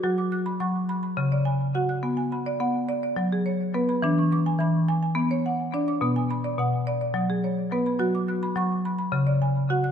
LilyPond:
<<
  \new Staff \with { instrumentName = "Marimba" } { \time 7/8 \tempo 4 = 106 << { r16 d'''16 fis'''8 cis'''8. b''8. gis''8 fis''16 fis'''16~ | fis'''16 gis''16 b''8 fis''8. d''8. cis''8 b'16 b''16~ | b''16 cis'''16 d'''8 b''8. gis''8. fis''8 d''16 d'''16~ | d'''16 gis''16 b''8 fis''8. d''8. cis''8 b'16 b''16~ |
b''16 d'''16 fis'''8 cis'''8. b''8. gis''8 fis''16 fis'''16 | } \\ { fis'8 r16 b''8 r16 b''8 r16 d''8 r16 fis'8 | b8 r16 d''8 r16 d''8 r16 gis'8 r16 b8 | d'8 r16 gis''8 r16 gis''8 r16 cis''8 r16 d'8 | b8 r16 d''8 r16 d''8 r16 gis'8 r16 b8 |
fis'8 r16 b''8 r16 b''8 r16 d''8 r16 fis'8 | } >> }
  \new Staff \with { instrumentName = "Marimba" } { \clef bass \time 7/8 fis4 fis4 cis8 r4 | r4 b4 fis8 r4 | e4 e4 b8 r4 | b,4 b,4 fis8 r4 |
fis4 fis4 cis8 r4 | }
>>